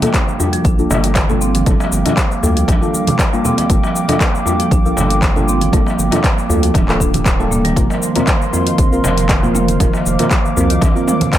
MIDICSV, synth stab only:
0, 0, Header, 1, 2, 480
1, 0, Start_track
1, 0, Key_signature, -2, "minor"
1, 0, Tempo, 508475
1, 1575, Time_signature, 4, 2, 24, 8
1, 10746, End_track
2, 0, Start_track
2, 0, Title_t, "Synth stab"
2, 0, Program_c, 0, 62
2, 23, Note_on_c, 0, 69, 78
2, 24, Note_on_c, 0, 62, 69
2, 24, Note_on_c, 0, 65, 62
2, 25, Note_on_c, 0, 58, 69
2, 90, Note_off_c, 0, 58, 0
2, 90, Note_off_c, 0, 62, 0
2, 90, Note_off_c, 0, 65, 0
2, 90, Note_off_c, 0, 69, 0
2, 374, Note_on_c, 0, 62, 64
2, 374, Note_on_c, 0, 65, 60
2, 375, Note_on_c, 0, 58, 72
2, 375, Note_on_c, 0, 69, 76
2, 711, Note_off_c, 0, 62, 0
2, 712, Note_off_c, 0, 58, 0
2, 712, Note_off_c, 0, 65, 0
2, 712, Note_off_c, 0, 69, 0
2, 741, Note_on_c, 0, 58, 93
2, 741, Note_on_c, 0, 65, 82
2, 741, Note_on_c, 0, 69, 98
2, 742, Note_on_c, 0, 62, 83
2, 1191, Note_off_c, 0, 58, 0
2, 1191, Note_off_c, 0, 65, 0
2, 1191, Note_off_c, 0, 69, 0
2, 1192, Note_off_c, 0, 62, 0
2, 1219, Note_on_c, 0, 58, 90
2, 1220, Note_on_c, 0, 62, 85
2, 1220, Note_on_c, 0, 65, 82
2, 1220, Note_on_c, 0, 69, 105
2, 1546, Note_off_c, 0, 58, 0
2, 1546, Note_off_c, 0, 62, 0
2, 1547, Note_off_c, 0, 65, 0
2, 1547, Note_off_c, 0, 69, 0
2, 1573, Note_on_c, 0, 62, 80
2, 1573, Note_on_c, 0, 65, 77
2, 1573, Note_on_c, 0, 69, 92
2, 1575, Note_on_c, 0, 58, 87
2, 1650, Note_off_c, 0, 62, 0
2, 1650, Note_off_c, 0, 65, 0
2, 1650, Note_off_c, 0, 69, 0
2, 1651, Note_off_c, 0, 58, 0
2, 1941, Note_on_c, 0, 62, 67
2, 1942, Note_on_c, 0, 58, 73
2, 1942, Note_on_c, 0, 65, 63
2, 1943, Note_on_c, 0, 69, 81
2, 2009, Note_off_c, 0, 58, 0
2, 2009, Note_off_c, 0, 62, 0
2, 2009, Note_off_c, 0, 65, 0
2, 2010, Note_off_c, 0, 69, 0
2, 2291, Note_on_c, 0, 58, 66
2, 2291, Note_on_c, 0, 65, 62
2, 2292, Note_on_c, 0, 62, 64
2, 2292, Note_on_c, 0, 69, 75
2, 2630, Note_off_c, 0, 58, 0
2, 2630, Note_off_c, 0, 65, 0
2, 2631, Note_off_c, 0, 62, 0
2, 2631, Note_off_c, 0, 69, 0
2, 2659, Note_on_c, 0, 58, 91
2, 2660, Note_on_c, 0, 62, 83
2, 2660, Note_on_c, 0, 65, 84
2, 2660, Note_on_c, 0, 69, 101
2, 3110, Note_off_c, 0, 58, 0
2, 3110, Note_off_c, 0, 62, 0
2, 3111, Note_off_c, 0, 65, 0
2, 3111, Note_off_c, 0, 69, 0
2, 3141, Note_on_c, 0, 58, 88
2, 3141, Note_on_c, 0, 69, 99
2, 3142, Note_on_c, 0, 62, 83
2, 3143, Note_on_c, 0, 65, 83
2, 3467, Note_off_c, 0, 58, 0
2, 3467, Note_off_c, 0, 62, 0
2, 3467, Note_off_c, 0, 69, 0
2, 3468, Note_off_c, 0, 65, 0
2, 3493, Note_on_c, 0, 58, 86
2, 3493, Note_on_c, 0, 62, 79
2, 3493, Note_on_c, 0, 65, 80
2, 3493, Note_on_c, 0, 69, 98
2, 3570, Note_off_c, 0, 58, 0
2, 3570, Note_off_c, 0, 62, 0
2, 3570, Note_off_c, 0, 65, 0
2, 3570, Note_off_c, 0, 69, 0
2, 3860, Note_on_c, 0, 62, 70
2, 3860, Note_on_c, 0, 65, 67
2, 3860, Note_on_c, 0, 69, 80
2, 3861, Note_on_c, 0, 58, 73
2, 3928, Note_off_c, 0, 62, 0
2, 3928, Note_off_c, 0, 65, 0
2, 3928, Note_off_c, 0, 69, 0
2, 3929, Note_off_c, 0, 58, 0
2, 4212, Note_on_c, 0, 58, 71
2, 4212, Note_on_c, 0, 69, 78
2, 4213, Note_on_c, 0, 65, 65
2, 4214, Note_on_c, 0, 62, 63
2, 4550, Note_off_c, 0, 58, 0
2, 4551, Note_off_c, 0, 62, 0
2, 4551, Note_off_c, 0, 65, 0
2, 4551, Note_off_c, 0, 69, 0
2, 4579, Note_on_c, 0, 58, 94
2, 4579, Note_on_c, 0, 69, 97
2, 4580, Note_on_c, 0, 65, 88
2, 4581, Note_on_c, 0, 62, 87
2, 5030, Note_off_c, 0, 58, 0
2, 5030, Note_off_c, 0, 69, 0
2, 5031, Note_off_c, 0, 62, 0
2, 5031, Note_off_c, 0, 65, 0
2, 5057, Note_on_c, 0, 62, 82
2, 5058, Note_on_c, 0, 65, 85
2, 5058, Note_on_c, 0, 69, 96
2, 5059, Note_on_c, 0, 58, 87
2, 5385, Note_off_c, 0, 62, 0
2, 5385, Note_off_c, 0, 69, 0
2, 5386, Note_off_c, 0, 58, 0
2, 5386, Note_off_c, 0, 65, 0
2, 5409, Note_on_c, 0, 65, 79
2, 5410, Note_on_c, 0, 58, 88
2, 5410, Note_on_c, 0, 62, 82
2, 5410, Note_on_c, 0, 69, 94
2, 5488, Note_off_c, 0, 65, 0
2, 5489, Note_off_c, 0, 58, 0
2, 5489, Note_off_c, 0, 62, 0
2, 5489, Note_off_c, 0, 69, 0
2, 5775, Note_on_c, 0, 65, 67
2, 5776, Note_on_c, 0, 58, 71
2, 5776, Note_on_c, 0, 62, 63
2, 5777, Note_on_c, 0, 69, 77
2, 5846, Note_off_c, 0, 58, 0
2, 5846, Note_off_c, 0, 62, 0
2, 5846, Note_off_c, 0, 65, 0
2, 5846, Note_off_c, 0, 69, 0
2, 6128, Note_on_c, 0, 58, 73
2, 6128, Note_on_c, 0, 62, 63
2, 6129, Note_on_c, 0, 65, 65
2, 6129, Note_on_c, 0, 69, 73
2, 6468, Note_off_c, 0, 62, 0
2, 6469, Note_off_c, 0, 58, 0
2, 6469, Note_off_c, 0, 65, 0
2, 6469, Note_off_c, 0, 69, 0
2, 6500, Note_on_c, 0, 58, 92
2, 6500, Note_on_c, 0, 65, 80
2, 6500, Note_on_c, 0, 69, 100
2, 6501, Note_on_c, 0, 62, 82
2, 6951, Note_off_c, 0, 58, 0
2, 6951, Note_off_c, 0, 62, 0
2, 6951, Note_off_c, 0, 65, 0
2, 6951, Note_off_c, 0, 69, 0
2, 6976, Note_on_c, 0, 58, 88
2, 6976, Note_on_c, 0, 65, 77
2, 6977, Note_on_c, 0, 62, 84
2, 6977, Note_on_c, 0, 69, 100
2, 7304, Note_off_c, 0, 65, 0
2, 7305, Note_off_c, 0, 58, 0
2, 7305, Note_off_c, 0, 62, 0
2, 7305, Note_off_c, 0, 69, 0
2, 7332, Note_on_c, 0, 60, 80
2, 7333, Note_on_c, 0, 58, 92
2, 7333, Note_on_c, 0, 70, 103
2, 7335, Note_on_c, 0, 65, 81
2, 7410, Note_off_c, 0, 58, 0
2, 7410, Note_off_c, 0, 60, 0
2, 7410, Note_off_c, 0, 70, 0
2, 7411, Note_off_c, 0, 65, 0
2, 7699, Note_on_c, 0, 58, 71
2, 7699, Note_on_c, 0, 65, 67
2, 7699, Note_on_c, 0, 70, 80
2, 7700, Note_on_c, 0, 60, 66
2, 7768, Note_off_c, 0, 58, 0
2, 7768, Note_off_c, 0, 60, 0
2, 7768, Note_off_c, 0, 65, 0
2, 7768, Note_off_c, 0, 70, 0
2, 8051, Note_on_c, 0, 60, 63
2, 8051, Note_on_c, 0, 65, 64
2, 8051, Note_on_c, 0, 70, 81
2, 8052, Note_on_c, 0, 58, 68
2, 8390, Note_off_c, 0, 58, 0
2, 8390, Note_off_c, 0, 60, 0
2, 8390, Note_off_c, 0, 65, 0
2, 8390, Note_off_c, 0, 70, 0
2, 8420, Note_on_c, 0, 60, 84
2, 8420, Note_on_c, 0, 65, 85
2, 8421, Note_on_c, 0, 58, 88
2, 8421, Note_on_c, 0, 70, 102
2, 8870, Note_off_c, 0, 60, 0
2, 8871, Note_off_c, 0, 58, 0
2, 8871, Note_off_c, 0, 65, 0
2, 8871, Note_off_c, 0, 70, 0
2, 8899, Note_on_c, 0, 65, 86
2, 8899, Note_on_c, 0, 70, 95
2, 8900, Note_on_c, 0, 58, 92
2, 8901, Note_on_c, 0, 60, 88
2, 9226, Note_off_c, 0, 58, 0
2, 9226, Note_off_c, 0, 65, 0
2, 9226, Note_off_c, 0, 70, 0
2, 9227, Note_off_c, 0, 60, 0
2, 9255, Note_on_c, 0, 60, 82
2, 9255, Note_on_c, 0, 70, 96
2, 9257, Note_on_c, 0, 58, 87
2, 9257, Note_on_c, 0, 65, 82
2, 9331, Note_off_c, 0, 60, 0
2, 9331, Note_off_c, 0, 70, 0
2, 9332, Note_off_c, 0, 58, 0
2, 9332, Note_off_c, 0, 65, 0
2, 9624, Note_on_c, 0, 58, 72
2, 9624, Note_on_c, 0, 60, 65
2, 9624, Note_on_c, 0, 65, 65
2, 9625, Note_on_c, 0, 70, 82
2, 9690, Note_off_c, 0, 58, 0
2, 9690, Note_off_c, 0, 60, 0
2, 9690, Note_off_c, 0, 65, 0
2, 9691, Note_off_c, 0, 70, 0
2, 9972, Note_on_c, 0, 60, 66
2, 9972, Note_on_c, 0, 65, 62
2, 9972, Note_on_c, 0, 70, 78
2, 9973, Note_on_c, 0, 58, 70
2, 10310, Note_off_c, 0, 60, 0
2, 10310, Note_off_c, 0, 65, 0
2, 10311, Note_off_c, 0, 58, 0
2, 10311, Note_off_c, 0, 70, 0
2, 10339, Note_on_c, 0, 65, 83
2, 10340, Note_on_c, 0, 60, 87
2, 10341, Note_on_c, 0, 58, 87
2, 10341, Note_on_c, 0, 70, 107
2, 10746, Note_off_c, 0, 58, 0
2, 10746, Note_off_c, 0, 60, 0
2, 10746, Note_off_c, 0, 65, 0
2, 10746, Note_off_c, 0, 70, 0
2, 10746, End_track
0, 0, End_of_file